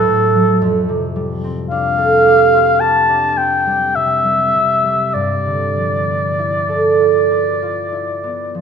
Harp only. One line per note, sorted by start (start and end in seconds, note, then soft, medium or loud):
0.00 0.34 F#3 soft
0.00 1.70 D4 soft
0.00 0.65 E4 soft
0.00 0.65 F#4 medium
0.00 1.97 A4 soft
0.35 0.66 F#3 soft
0.62 4.52 F2 medium
0.89 3.94 C3 soft
1.16 3.65 G3 soft
1.44 3.36 C4 soft
1.71 3.08 D4 soft
1.98 5.88 A4 soft
2.25 2.80 G4 soft
2.53 5.20 C5 soft
2.81 6.71 G4 soft
3.09 6.99 D4 soft
3.37 5.20 C4 soft
3.67 4.23 G3 soft
3.96 4.53 C3 soft
4.25 4.83 G3 soft
4.54 5.20 C3 soft
4.84 8.61 G3 soft
5.15 8.61 G2 soft
5.46 8.61 D3 soft
5.77 8.53 F3 soft
6.07 8.22 B3 soft
6.39 7.91 E4 soft
6.69 8.61 A4 soft
7.00 7.61 F4 soft
7.31 8.61 B4 soft
7.62 8.61 F4 soft
7.92 8.61 E4 soft
8.24 8.61 B3 soft
8.55 8.61 F3 soft